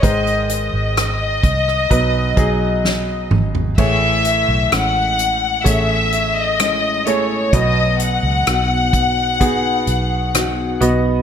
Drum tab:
CC |----------------|x---------------|----------------|
HH |xxx-x-x-x-x-----|--x-x-x-x-x-x-x-|x-x-x-x-x-x-x-x-|
SD |----r--r----o---|----r-------r---|----r-------r---|
T2 |--------------o-|----------------|----------------|
FT |---------------o|----------------|----------------|
BD |o-----o-o-o-----|o-------o-------|o-----o-o-------|